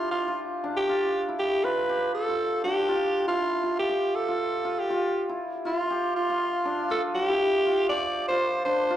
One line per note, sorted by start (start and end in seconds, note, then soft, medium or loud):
0.00 0.63 D4 medium
0.00 0.34 E4 medium
0.00 1.89 G4 medium
0.11 0.46 F4 medium
0.28 0.89 F4 medium
0.64 2.65 D4 medium
0.77 1.24 G4 medium
0.89 1.34 F4 medium
1.28 1.70 E4 medium
1.39 1.66 G4 medium
1.64 2.28 F4 medium
1.64 2.14 B4 loud
1.89 3.89 G4 medium
2.15 2.61 A4 medium
2.29 2.88 F4 medium
2.64 6.39 D4 medium
2.64 3.24 G4 loud
2.89 3.34 F4 medium
3.28 3.70 E4 medium
3.28 3.75 F4 loud
3.64 4.28 F4 medium
3.79 4.17 G4 medium
3.89 5.90 G4 medium
4.15 4.81 A4 medium
4.29 4.64 F4 medium
4.65 4.90 F4 medium
4.79 5.29 G4 medium
4.90 5.35 F4 medium
5.29 5.71 E4 medium
5.65 6.29 F4 medium
5.65 6.12 F4 medium
5.90 7.91 G4 medium
6.16 6.86 F4 medium
6.30 6.90 F4 medium
6.65 8.65 D4 medium
6.90 7.35 F4 medium
6.90 7.02 A4 medium
7.15 7.85 G4 loud
7.29 7.72 E4 medium
7.66 8.30 F4 medium
7.89 8.97 G4 medium
7.89 8.25 D5 loud
8.28 8.90 F4 medium
8.28 8.62 C5 loud
8.65 8.97 D4 medium
8.65 8.97 C5 loud
8.90 8.97 F4 medium